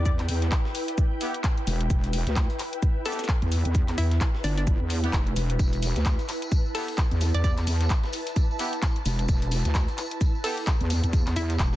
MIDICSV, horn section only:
0, 0, Header, 1, 2, 480
1, 0, Start_track
1, 0, Key_signature, 1, "minor"
1, 0, Tempo, 461538
1, 58, Time_signature, 4, 2, 24, 8
1, 12230, End_track
2, 0, Start_track
2, 0, Title_t, "Horn section"
2, 0, Program_c, 0, 61
2, 1257, Note_on_c, 0, 59, 89
2, 1257, Note_on_c, 0, 64, 84
2, 1257, Note_on_c, 0, 67, 98
2, 1382, Note_off_c, 0, 59, 0
2, 1382, Note_off_c, 0, 64, 0
2, 1382, Note_off_c, 0, 67, 0
2, 3177, Note_on_c, 0, 67, 96
2, 3178, Note_on_c, 0, 59, 90
2, 3178, Note_on_c, 0, 64, 80
2, 3302, Note_off_c, 0, 59, 0
2, 3302, Note_off_c, 0, 64, 0
2, 3302, Note_off_c, 0, 67, 0
2, 5238, Note_on_c, 0, 59, 91
2, 5238, Note_on_c, 0, 64, 87
2, 5238, Note_on_c, 0, 67, 107
2, 5326, Note_off_c, 0, 59, 0
2, 5326, Note_off_c, 0, 64, 0
2, 5326, Note_off_c, 0, 67, 0
2, 7018, Note_on_c, 0, 59, 91
2, 7018, Note_on_c, 0, 64, 80
2, 7018, Note_on_c, 0, 67, 102
2, 7142, Note_off_c, 0, 59, 0
2, 7142, Note_off_c, 0, 64, 0
2, 7142, Note_off_c, 0, 67, 0
2, 8938, Note_on_c, 0, 59, 91
2, 8938, Note_on_c, 0, 64, 84
2, 8938, Note_on_c, 0, 67, 99
2, 9062, Note_off_c, 0, 59, 0
2, 9062, Note_off_c, 0, 64, 0
2, 9062, Note_off_c, 0, 67, 0
2, 10858, Note_on_c, 0, 59, 87
2, 10858, Note_on_c, 0, 64, 83
2, 10858, Note_on_c, 0, 67, 104
2, 10982, Note_off_c, 0, 59, 0
2, 10982, Note_off_c, 0, 64, 0
2, 10982, Note_off_c, 0, 67, 0
2, 12230, End_track
0, 0, End_of_file